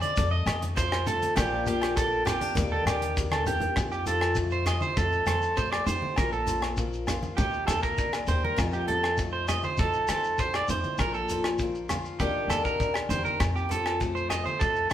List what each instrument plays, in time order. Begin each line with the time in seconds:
Already playing: steel-string acoustic guitar F2 F3 A3 D#4 A4
0.02 clean electric guitar D5, closed hi-hat, high conga, shekere
0.16 upright bass F2, steel-string acoustic guitar A4, kick, closed hi-hat, shekere
0.31 clean electric guitar D#5
0.46 upright bass F2, steel-string acoustic guitar A3, cross-stick, closed hi-hat, low agogo, shekere
0.62 closed hi-hat, high conga, shekere
0.76 steel-string acoustic guitar F3, clean electric guitar C5, kick, closed hi-hat, shekere
0.92 cross-stick, low agogo
1.07 steel-string acoustic guitar A3, clean electric guitar A4, closed hi-hat, low conga, shekere
1.22 closed hi-hat, high conga, shekere
1.36 upright bass A#1, steel-string acoustic guitar A#2 F3 A#3 D4, clean electric guitar G4, muted steel-string acoustic guitar stroke, kick, cross-stick, closed hi-hat, low agogo, shekere
1.66 steel-string acoustic guitar A#3, clean electric guitar G4, closed hi-hat, low conga, shekere
1.82 cross-stick, closed hi-hat, low agogo
1.96 steel-string acoustic guitar G4, clean electric guitar A4, kick, closed hi-hat, shekere
2.25 steel-string acoustic guitar C4, clean electric guitar G4, cross-stick, closed hi-hat, low conga, low agogo, shekere
2.41 steel-string acoustic guitar D4, closed hi-hat, high conga
2.55 upright bass D#2, steel-string acoustic guitar D#3 A#3 D4 G4, kick, closed hi-hat, high conga, low conga, shekere
2.72 clean electric guitar A4
2.85 upright bass D#2, steel-string acoustic guitar D4, clean electric guitar G4, cross-stick, closed hi-hat, low agogo, shekere
3.01 closed hi-hat, high conga, shekere
3.17 kick, closed hi-hat, high conga, shekere
3.31 clean electric guitar A4, cross-stick, high conga, low agogo
3.47 clean electric guitar G4, steel-string acoustic guitar G4, closed hi-hat, low conga, shekere
3.60 closed hi-hat, low conga, shekere
3.76 steel-string acoustic guitar F2, upright bass F2, kick, cross-stick, low agogo, shekere
3.92 clean electric guitar G4, shekere
4.06 steel-string acoustic guitar F3, clean electric guitar A4, closed hi-hat, low conga, shekere
4.21 cross-stick, low agogo
4.35 steel-string acoustic guitar A3, kick, shekere
4.51 clean electric guitar C5, shekere
4.66 steel-string acoustic guitar A4, clean electric guitar D#5, cross-stick, closed hi-hat, low conga, low agogo, shekere
4.81 clean electric guitar C5, high conga, shekere
4.97 upright bass F2, steel-string acoustic guitar D#4, clean electric guitar A4, kick, shekere
5.12 shekere
5.26 upright bass F2, clean electric guitar A4, steel-string acoustic guitar C5, cross-stick, closed hi-hat, high conga, low conga, low agogo, shekere
5.42 shekere
5.57 steel-string acoustic guitar A3, clean electric guitar C5, kick, shekere
5.72 clean electric guitar D5, cross-stick, low agogo, shekere
5.87 upright bass F2, steel-string acoustic guitar G4, clean electric guitar C5, closed hi-hat, low conga, shekere
6.02 high conga
6.16 upright bass A#1, steel-string acoustic guitar A#2, clean electric guitar A#4, kick, cross-stick, low agogo, shekere
6.33 clean electric guitar A4, shekere
6.47 steel-string acoustic guitar F3, closed hi-hat, low conga, shekere
6.62 cross-stick, low agogo
6.77 steel-string acoustic guitar A#3, kick, shekere
6.93 shekere
7.07 steel-string acoustic guitar F4, cross-stick, closed hi-hat, low conga, low agogo, shekere
7.23 high conga, shekere
7.37 upright bass D#2, steel-string acoustic guitar D#3, clean electric guitar G4, kick, shekere
7.54 shekere
7.67 upright bass D#2, steel-string acoustic guitar A#3, clean electric guitar A4, cross-stick, closed hi-hat, high conga, low conga, low agogo, shekere
7.83 clean electric guitar A#4, kick, shekere
7.98 steel-string acoustic guitar D4, kick, shekere
8.13 cross-stick, low agogo, shekere
8.27 upright bass D#2, steel-string acoustic guitar G4, clean electric guitar C5, closed hi-hat, low conga, shekere
8.44 clean electric guitar A#4, high conga
8.56 steel-string acoustic guitar F2 F3 A3 D#4 A4, upright bass F2, kick, cross-stick, low agogo, shekere
8.73 clean electric guitar G4, shekere
8.88 steel-string acoustic guitar F3, clean electric guitar A4, closed hi-hat, low conga
9.03 cross-stick, low agogo
9.17 steel-string acoustic guitar A3, kick, shekere
9.33 clean electric guitar C5
9.48 steel-string acoustic guitar A4, clean electric guitar D#5, cross-stick, closed hi-hat, low conga, low agogo, shekere
9.64 clean electric guitar C5, high conga, shekere
9.77 upright bass F2, steel-string acoustic guitar D#4, clean electric guitar A4, kick, shekere
9.93 shekere
10.08 upright bass F2, clean electric guitar A4, steel-string acoustic guitar C5, cross-stick, closed hi-hat, high conga, low agogo, shekere
10.24 shekere
10.38 steel-string acoustic guitar G2, clean electric guitar C5, kick, shekere
10.53 clean electric guitar D5, cross-stick, low agogo, shekere
10.68 upright bass F2, steel-string acoustic guitar A2, clean electric guitar C5, closed hi-hat, low conga, shekere
10.83 high conga, shekere
10.98 upright bass A#1, steel-string acoustic guitar A#2, clean electric guitar A#4, kick, cross-stick, low agogo, shekere
11.14 clean electric guitar A4, shekere
11.29 steel-string acoustic guitar F3, closed hi-hat, low conga, shekere
11.44 cross-stick, low agogo, shekere
11.58 steel-string acoustic guitar A#3, kick, shekere
11.75 shekere
11.89 steel-string acoustic guitar F4, cross-stick, closed hi-hat, high conga, low conga, low agogo, shekere
12.05 shekere
12.20 upright bass D#2, steel-string acoustic guitar D#3 A#3 D4 G4, clean electric guitar G4, kick, shekere
12.48 upright bass D#2, steel-string acoustic guitar A#3, clean electric guitar A4, cross-stick, closed hi-hat, high conga, low conga, low agogo, shekere
12.65 clean electric guitar A#4, kick, shekere
12.80 steel-string acoustic guitar D4, kick, shekere
12.94 cross-stick, low agogo, shekere
13.09 upright bass E2, steel-string acoustic guitar G4, clean electric guitar C5, closed hi-hat, high conga, low conga, shekere
13.25 clean electric guitar A#4, high conga, shekere
13.40 upright bass F2, muted steel-string acoustic guitar stroke, kick, cross-stick, low agogo, shekere
13.56 clean electric guitar G4, shekere
13.69 steel-string acoustic guitar F3, clean electric guitar A4, closed hi-hat, low conga, shekere
13.86 cross-stick, low agogo
14.00 steel-string acoustic guitar A3, kick, shekere
14.15 clean electric guitar C5, shekere
14.30 steel-string acoustic guitar A4, clean electric guitar D#5, cross-stick, closed hi-hat, low conga, low agogo, shekere
14.46 clean electric guitar C5, high conga, shekere
14.59 upright bass F2, steel-string acoustic guitar D#4, clean electric guitar A4, kick, shekere
14.76 shekere
14.90 clean electric guitar A4